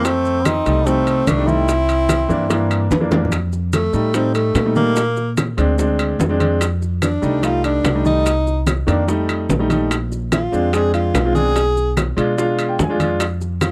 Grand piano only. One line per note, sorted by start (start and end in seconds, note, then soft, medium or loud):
0.66 0.80 G3 medium
0.66 0.81 A3 medium
0.66 0.81 D#4 medium
0.86 1.22 G3 medium
0.86 1.22 A3 medium
0.86 1.23 D#4 medium
1.37 1.45 G3 medium
1.37 1.45 A3 medium
1.37 1.45 D#4 medium
1.47 1.68 G3 medium
1.47 1.68 A3 medium
1.47 1.68 D#4 medium
2.29 2.43 E3 medium
2.29 2.44 A#3 medium
2.29 2.44 D4 loud
2.49 2.86 E3 medium
2.49 2.86 A#3 medium
2.49 2.86 D4 medium
3.00 3.08 E3 medium
3.00 3.08 A#3 medium
3.00 3.09 D4 medium
3.11 3.32 E3 medium
3.11 3.32 A#3 medium
3.11 3.32 D4 medium
3.93 4.08 G3 medium
3.93 4.08 A3 medium
3.93 4.08 D#4 medium
4.14 4.50 G3 medium
4.14 4.50 A3 medium
4.14 4.50 D#4 medium
4.65 4.72 G3 medium
4.65 4.73 A3 medium
4.65 4.73 D#4 medium
4.75 4.96 G3 medium
4.75 4.96 A3 medium
4.75 4.97 D#4 medium
5.57 5.72 G#3 medium
5.57 5.72 C4 medium
5.57 5.73 D4 loud
5.78 6.14 G#3 medium
5.78 6.15 C4 medium
5.78 6.15 D4 loud
6.29 6.37 G#3 medium
6.29 6.37 C4 medium
6.29 6.37 D4 loud
6.40 6.61 G#3 medium
6.40 6.61 C4 medium
6.40 6.61 D4 loud
7.22 7.37 G3 medium
7.22 7.37 A3 medium
7.22 7.37 D#4 medium
7.42 7.79 G3 medium
7.42 7.79 A3 medium
7.42 7.79 D#4 medium
7.94 8.02 G3 medium
7.94 8.02 A3 medium
7.94 8.03 D#4 medium
8.05 8.26 G3 medium
8.05 8.26 A3 medium
8.05 8.26 D#4 medium
8.87 9.02 D#3 medium
8.87 9.02 A#3 medium
8.87 9.02 D4 loud
9.07 9.44 G3 medium
9.07 9.44 A3 medium
9.07 9.44 D#4 loud
9.59 9.67 G3 medium
9.59 9.67 A3 medium
9.59 9.67 D#4 medium
9.69 9.90 G3 medium
9.69 9.91 A3 medium
9.69 9.91 D#4 loud
10.52 10.67 G#3 medium
10.52 10.67 C4 medium
10.52 10.67 D4 medium
10.73 11.09 G#3 medium
10.73 11.09 C4 medium
10.73 11.10 D4 medium
11.25 11.32 G#3 medium
11.25 11.32 C4 medium
11.25 11.33 F4 medium
11.35 11.55 G#3 medium
11.35 11.56 C4 medium
11.35 11.56 D4 medium
12.17 12.31 G#3 loud
12.17 12.32 D4 medium
12.17 12.32 F4 loud
12.17 12.36 D5 medium
12.38 12.74 G#3 medium
12.38 12.74 D4 medium
12.38 12.74 F4 loud
12.38 12.67 F5 medium
12.69 12.78 G5 medium
12.79 13.18 G#5 medium
12.89 12.97 G#3 medium
12.89 12.97 D4 medium
12.89 12.97 F4 medium
12.99 13.20 G#3 medium
12.99 13.20 D4 medium
12.99 13.21 F4 loud